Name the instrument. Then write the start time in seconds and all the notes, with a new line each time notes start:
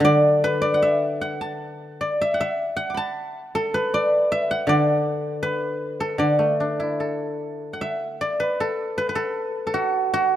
guzheng
Already playing: F#3 E5 F#5
0.00 D3
0.05 D5
0.44 B4
0.62 D5
0.74 F#5
0.82 E5
1.21 F#5
1.41 A5
2.01 D5
2.21 E5
2.34 F#5
2.41 E5
2.76 F#5
2.90 D6
2.94 A5 B5
3.55 A4
3.74 B4
3.94 D5
4.32 E5
4.51 F#5
4.67 D3 D5
5.43 B4
6.00 A4
6.18 D3 D5
6.39 A3
6.60 D4
6.80 E4
7.00 A4
7.73 F#5
7.81 E5
8.21 D5
8.40 B4
8.60 A4
8.98 B4
9.09 B4
9.15 A4
9.67 A4
9.74 F#4
10.14 F#4